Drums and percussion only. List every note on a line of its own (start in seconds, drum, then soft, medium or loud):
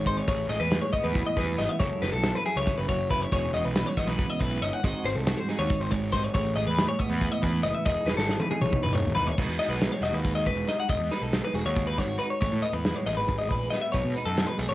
0.06 kick medium
0.06 closed hi-hat medium
0.28 kick loud
0.28 closed hi-hat medium
0.50 closed hi-hat medium
0.72 snare medium
0.72 closed hi-hat medium
0.93 kick medium
0.93 closed hi-hat medium
1.15 kick loud
1.15 snare soft
1.15 closed hi-hat medium
1.37 kick medium
1.37 snare soft
1.37 closed hi-hat medium
1.59 snare soft
1.59 closed hi-hat medium
1.80 kick loud
1.80 closed hi-hat medium
2.03 snare soft
2.03 closed hi-hat medium
2.24 snare medium
2.24 closed hi-hat medium
2.46 closed hi-hat medium
2.67 kick loud
2.67 snare soft
2.67 closed hi-hat medium
2.89 kick medium
2.89 closed hi-hat medium
3.11 kick medium
3.11 closed hi-hat medium
3.32 kick loud
3.32 closed hi-hat medium
3.55 closed hi-hat medium
3.76 snare medium
3.76 closed hi-hat medium
3.97 kick medium
3.97 snare soft
3.97 closed hi-hat medium
4.19 kick loud
4.19 closed hi-hat medium
4.40 kick medium
4.40 closed hi-hat medium
4.63 closed hi-hat medium
4.84 kick loud
4.84 closed hi-hat medium
5.06 closed hi-hat medium
5.27 snare loud
5.27 closed hi-hat medium
5.49 snare soft
5.49 closed hi-hat medium
5.69 kick loud
5.69 closed hi-hat medium
5.92 kick medium
5.92 closed hi-hat medium
6.12 kick medium
6.12 snare soft
6.12 closed hi-hat medium
6.34 kick loud
6.34 closed hi-hat medium
6.57 closed hi-hat medium
6.78 snare medium
6.78 closed hi-hat medium
7.00 kick medium
7.00 closed hi-hat medium
7.21 kick medium
7.21 closed hi-hat medium
7.43 kick medium
7.43 closed hi-hat medium
7.64 closed hi-hat medium
7.86 kick loud
7.86 closed hi-hat medium
8.08 snare medium
8.18 snare soft
8.29 snare medium
8.40 high tom medium
8.51 high tom medium
8.62 mid tom medium
8.73 kick medium
8.73 mid tom medium
8.84 mid tom medium
8.95 mid tom medium
9.05 floor tom medium
9.16 floor tom medium
9.27 floor tom medium
9.38 kick loud
9.38 crash medium
9.60 closed hi-hat medium
9.81 snare medium
9.81 closed hi-hat medium
10.03 snare soft
10.03 closed hi-hat medium
10.24 kick medium
10.24 closed hi-hat medium
10.46 kick medium
10.46 closed hi-hat medium
10.68 snare soft
10.68 closed hi-hat medium
10.89 kick medium
10.89 closed hi-hat medium
11.11 snare soft
11.11 closed hi-hat medium
11.33 snare medium
11.33 closed hi-hat medium
11.55 closed hi-hat medium
11.76 kick loud
11.76 closed hi-hat medium
11.98 kick medium
11.98 snare soft
11.98 closed hi-hat medium
12.20 closed hi-hat medium
12.42 kick loud
12.42 closed hi-hat medium
12.63 closed hi-hat medium
12.85 snare medium
12.85 closed hi-hat medium
13.07 closed hi-hat medium
13.28 kick loud
13.28 snare soft
13.28 closed hi-hat medium
13.50 kick medium
13.50 closed hi-hat medium
13.73 snare soft
13.73 closed hi-hat medium
13.94 kick loud
13.94 closed hi-hat medium
14.16 closed hi-hat medium
14.38 snare medium
14.38 closed hi-hat medium
14.60 closed hi-hat medium